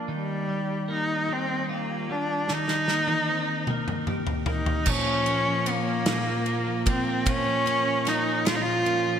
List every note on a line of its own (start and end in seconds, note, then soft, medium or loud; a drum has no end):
0.00 0.48 A#3 soft
0.00 0.16 D4 soft
0.00 0.51 F4 soft
0.08 2.49 D#3 medium
0.12 0.86 G3 medium
0.48 1.28 G3 soft
0.88 2.89 A#3 soft
0.93 1.34 D#4 medium
1.29 2.09 G3 medium
1.29 1.70 C4 medium
1.69 2.13 A#3 medium
1.69 2.57 F4 soft
2.09 2.89 G3 soft
2.09 2.53 D4 medium
2.48 4.86 D#3 medium
2.48 4.10 D#4 medium
2.48 snare soft
2.68 snare soft
2.88 3.69 A#3 soft
2.88 snare soft
3.08 high tom soft
3.29 4.96 C4 soft
3.67 4.47 A#3 medium
3.67 mid tom medium
3.88 mid tom medium
4.07 4.95 G4 soft
4.07 mid tom medium
4.27 floor tom medium
4.46 5.07 A#3 soft
4.46 4.91 D#4 medium
4.46 floor tom medium
4.66 floor tom medium
4.86 6.06 A#2 medium
4.86 7.25 F3 medium
4.86 6.06 F4 medium
4.86 kick medium
4.86 crash medium
4.90 5.71 C#4 medium
5.07 5.46 F3 medium
5.26 5.86 A#3 medium
5.26 6.47 C#4 medium
5.26 ride soft
5.47 6.24 F3 medium
5.66 6.85 A#3 medium
5.66 6.88 A#3 medium
5.66 6.87 C#4 medium
5.66 ride medium
5.87 6.45 A#3 medium
6.06 7.26 A#2 medium
6.06 7.25 F4 medium
6.06 snare loud
6.06 ride medium
6.26 6.65 F3 medium
6.46 7.05 A#3 medium
6.46 ride soft
6.66 7.45 F3 medium
6.86 8.04 A#3 medium
6.86 7.30 C4 medium
6.86 kick loud
6.86 ride medium
7.06 7.65 A#3 medium
7.26 8.46 A#2 medium
7.26 9.20 F3 medium
7.26 8.09 C#4 loud
7.26 8.44 F4 medium
7.26 kick loud
7.26 ride medium
7.46 7.86 F3 medium
7.66 8.26 A#3 medium
7.66 8.84 C#4 medium
7.66 ride soft
7.87 8.66 F3 medium
8.05 9.20 A#3 medium
8.05 9.20 C#4 medium
8.05 8.49 D#4 medium
8.05 snare soft
8.05 ride medium
8.27 8.85 A#3 medium
8.45 9.20 A#2 medium
8.45 9.20 F4 medium
8.45 8.56 F4 medium
8.45 snare loud
8.45 ride medium
8.55 8.63 D#4 medium
8.61 9.20 F4 medium
8.67 9.05 F3 medium
8.85 9.20 A#3 medium
8.85 9.20 C#4 medium
8.85 ride soft
9.06 9.20 F3 medium